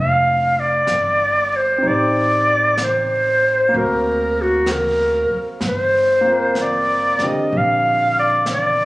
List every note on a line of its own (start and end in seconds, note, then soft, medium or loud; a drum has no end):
0.00 0.85 F1 medium
0.00 1.77 C4 soft
0.00 1.84 D4 soft
0.00 1.86 F4 soft
0.00 1.88 A4 soft
0.00 0.61 F5 medium
0.60 1.57 D5 medium
0.87 1.79 G1 medium
0.87 brush sweep soft
0.87 snare soft
0.87 hi-hat pedal soft
1.56 1.89 C5 medium
1.78 3.70 C4 soft
1.82 3.69 A1 medium
1.82 3.72 D#4 soft
1.82 3.74 G4 soft
1.82 brush sweep soft
1.88 3.76 C5 medium
1.88 2.80 D5 medium
2.77 brush sweep soft
2.77 snare soft
2.77 hi-hat pedal soft
2.84 3.80 C5 medium
3.69 5.60 A#3 soft
3.69 brush sweep soft
3.73 5.27 D2 medium
3.73 5.62 C4 soft
3.73 5.64 F#4 soft
3.78 4.43 A#4 medium
3.78 5.66 A#4 medium
4.42 4.73 F#4 medium
4.66 brush sweep soft
4.66 snare soft
4.66 hi-hat pedal medium
4.72 5.46 A#4 medium
5.30 muted upright bass stroke soft
5.61 7.15 G1 medium
5.61 brush sweep soft
5.61 snare soft
5.68 6.63 C5 medium
6.21 8.85 A#3 soft
6.21 7.21 C4 soft
6.28 8.85 F4 soft
6.32 8.85 A#4 medium
6.55 brush sweep soft
6.55 snare soft
6.55 hi-hat pedal soft
6.62 7.29 D5 medium
7.19 8.85 D3 soft
7.19 8.85 C4 soft
7.19 muted upright bass stroke soft
7.19 snare soft
7.24 8.85 G4 soft
7.24 7.59 D#5 medium
7.51 8.85 A#1 medium
7.51 brush sweep soft
7.58 8.17 F5 medium
8.19 8.47 D5 medium
8.46 brush sweep soft
8.46 snare soft
8.46 hi-hat pedal soft
8.53 8.85 D5 medium